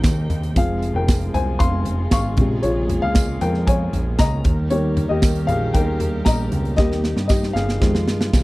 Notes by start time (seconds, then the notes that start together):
Already playing: C3 D#3 G3 A#3 D#4 G4 G#4 A#4 D#5 F5 G5
0.04 D#2, kick, snare, closed hi-hat, tambourine
0.30 D#2, closed hi-hat, floor tom
0.43 closed hi-hat
0.55 F1 F3 G#3 C4 F4 G#4 F5, kick, closed hi-hat
0.82 closed hi-hat
0.94 F1 A#4 G5
1.08 kick, snare, closed hi-hat, tambourine
1.21 closed hi-hat
1.34 C2 C5 G#5, closed hi-hat, floor tom
1.59 F1 F5 C6, kick, closed hi-hat
1.85 closed hi-hat, floor tom
2.11 G#1 F5 C#6, kick, snare, closed hi-hat, tambourine
2.37 A#1 A#2 C3 C#3 G#3 A#3, kick, closed hi-hat, floor tom
2.63 A#1 F4 C#5, closed hi-hat
2.89 closed hi-hat, floor tom
3.02 C#2 G#4 F5
3.15 kick, snare, closed hi-hat, tambourine
3.41 F2 A#4 G5, closed hi-hat, floor tom
3.54 snare
3.67 C#5 G#5, kick, closed hi-hat
3.93 A#1, closed hi-hat, floor tom
4.19 C#2 D#5 A#5, kick, snare, closed hi-hat, tambourine
4.44 D#2 D#3 G3 G4 A#4, kick, closed hi-hat, floor tom
4.70 D#3 G3 A#3 G4 C#5, closed hi-hat
4.97 closed hi-hat, floor tom
5.09 D#2 G4 D#5
5.22 kick, snare, closed hi-hat, tambourine
5.35 closed hi-hat
5.47 A#1 G#4 F5, closed hi-hat, floor tom
5.74 D#2 A#4 G5, kick, closed hi-hat
6.00 closed hi-hat, floor tom
6.25 A#1 D#5 A#5, kick, snare, closed hi-hat, tambourine
6.52 C#2, closed hi-hat, floor tom
6.65 closed hi-hat
6.77 D#2 C3 D#3 G3 A#3 D#4 G4 D#5, kick, snare
6.92 snare
7.04 snare
7.16 G2, snare
7.28 G4 D#5, kick, snare, tambourine
7.43 snare
7.53 G1 G#4 F5, snare
7.69 snare
7.80 F2 D#3 F3 G#3 F4 G4, kick, snare
7.95 snare
8.07 G2, snare
8.21 snare
8.33 C2, kick, snare, tambourine